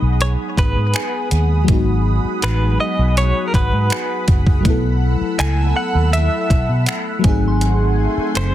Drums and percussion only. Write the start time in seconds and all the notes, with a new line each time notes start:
0.21 closed hi-hat
0.57 kick, closed hi-hat
0.94 finger snap, closed hi-hat
1.31 closed hi-hat
1.68 kick, closed hi-hat
2.42 finger snap, closed hi-hat
3.17 closed hi-hat
3.54 kick, closed hi-hat
3.90 finger snap, closed hi-hat
4.28 kick, closed hi-hat
4.47 kick
4.65 kick, closed hi-hat
5.39 finger snap, closed hi-hat
6.13 closed hi-hat
6.50 kick, closed hi-hat
6.86 finger snap, closed hi-hat
7.24 kick, closed hi-hat
7.61 closed hi-hat
8.35 finger snap, closed hi-hat